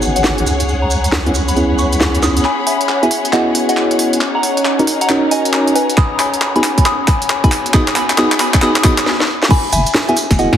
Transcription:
Already playing: G#1 B3 C#4 D#4 F#4 G#4 C#5 F#5 A#5
0.02 maracas
0.16 F#5, closed hi-hat, maracas
0.24 snare, maracas
0.38 closed hi-hat
0.46 C#2, maracas
0.60 closed hi-hat, maracas
0.69 maracas
0.82 A#5 B5
0.91 maracas
1.04 closed hi-hat, maracas
1.12 snare, maracas
1.26 B3 C#4 E4 G#4, closed hi-hat
1.35 maracas
1.48 B5, closed hi-hat, maracas
1.56 B3 C#4 E4 G#4, closed hi-hat, maracas
1.79 C#6, maracas
1.92 closed hi-hat, maracas
2.01 snare, maracas
2.15 closed hi-hat
2.23 D#6, snare, maracas
2.37 closed hi-hat, maracas
2.45 C#4 C#5 G#5 B5, clap
2.67 E5 G#5, open hi-hat
2.81 closed hi-hat
2.89 clap
3.03 B3 E4 F#4 G#4 E5 G#5, closed hi-hat
3.11 open hi-hat
3.25 closed hi-hat
3.33 B3 E4 F#4 G#4 D#5 F#5, clap, closed hi-hat
3.55 open hi-hat
3.69 D#5 F#5, closed hi-hat
3.77 clap
3.91 closed hi-hat
3.99 open hi-hat
4.13 closed hi-hat
4.21 D#4, clap
4.35 F#5 A#5
4.43 open hi-hat
4.57 closed hi-hat
4.65 clap
4.79 C#4 D#4 F#4 A#4, closed hi-hat
4.87 open hi-hat
4.92 A#5
5.01 F#5 A#5, closed hi-hat
5.09 C#4 D#4 F#4 A#4, clap, closed hi-hat
5.31 D#5 G#5, open hi-hat
5.45 closed hi-hat
5.53 clap
5.67 closed hi-hat
5.75 B4 G#5, open hi-hat
5.90 closed hi-hat
5.97 B5 D#6, kick, clap
6.20 G#5 B5, clap, open hi-hat
6.34 closed hi-hat
6.42 clap
6.56 B3 D#4 F#4 G#4 G#5 B5, closed hi-hat
6.64 clap, open hi-hat
6.78 kick, closed hi-hat
6.86 B5 D#6, clap, closed hi-hat
7.08 G#5 B5, kick, clap, open hi-hat
7.22 closed hi-hat
7.30 clap
7.44 B3 D#4 F#4 G#4 G#5 B5, kick, closed hi-hat
7.52 clap, open hi-hat
7.66 closed hi-hat
7.74 B3 D#4 F#4 G#4 B5 D#6, kick, clap
7.88 clap
7.95 G#5 B5, clap, open hi-hat
8.10 clap, closed hi-hat
8.18 B3 D#4 F#4 G#4 B5 D#6, clap
8.32 clap, closed hi-hat
8.40 G#5 B5, clap, open hi-hat
8.54 kick, clap, closed hi-hat
8.62 B3 D#4 F#4 G#4 B5 D#6, clap, closed hi-hat
8.76 clap
8.84 B3 D#4 F#4 G#4 B5 D#6, kick, clap, open hi-hat
8.98 clap, closed hi-hat
9.06 snare
9.20 snare
9.43 snare
9.50 C#4 C#5 G#5 B5, kick, crash, maracas
9.73 F#1 E5 G#5, open hi-hat, maracas
9.86 closed hi-hat, maracas
9.94 snare, maracas
10.09 B3 E4 F#4 G#4 E5 G#5, closed hi-hat
10.17 open hi-hat, maracas
10.31 E1, kick, snare, closed hi-hat, maracas
10.39 B3 E4 F#4 G#4 D#5 F#5, closed hi-hat, maracas
10.53 F#2, snare

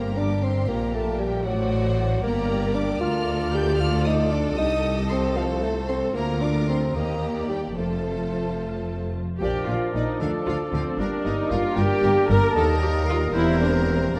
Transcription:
Already playing: G1 G2 A#3 G4 A#4 A#5
0.17 D4 D6
0.43 C4 C6
0.68 A#1 A#2 A#3 A#4 A#5
0.95 A3 A5
1.19 G3 G5
1.45 A1 A2 F#3 F#4 C5 D5 F#5
2.23 G1 G2 A#3 G4 A#4 D5 A#5
2.75 D4 D6
3.00 D2 F4 A#4 D5 F6
3.04 A4
3.52 G4 G6
3.79 F4 F6
4.04 D#4 D#6
4.31 D4 D6
4.56 C2 D#4 G4 D#5 D#6
5.09 C4 C6
5.35 F3 A4 C5 F5
5.63 A3 A5
5.88 C4 C6
6.14 D2 A#3 F4 A#4 A#5
6.41 D4 D6
6.69 C4 C6
6.95 D#2 A#3 G4 D#5 A#5
7.37 D5
7.50 G3 G5
7.77 F1 F2 A3 F4 A4 C5 A5
9.39 A#1 A#2 F3 D4 G4 A#4 D5 G5
9.66 A#1 A#2 F4 D5 F5
9.94 A#1 A#2 D#4 D5 D#5
10.20 D2 D3 F3 D4 A4 D5 F5
10.47 D2 D3 F4 F5
10.73 D2 D3 C4 C5 F5
10.97 G1 G2 G3 A#3 D4 A#4 D5
11.23 G1 G2 D#4 A#4 D#5
11.50 G1 G2 F4 A#4 F5
11.75 G1 G2 G3 G4 A#4 D5 G5
12.03 G1 G2 A#4
12.27 G1 G2 A#4 A#5
12.50 A#4 A5
12.55 D#2 G3 D#4 A4 A#4 D#5
12.78 G5
12.82 G4
13.04 F5
13.09 F4
13.32 E1 E2 G3 C4 E4 A#4 C5 E5
13.60 D4 D5
13.87 C4 C5
14.14 F1 F2 F3 A#3 D4 A#4 D5 F5

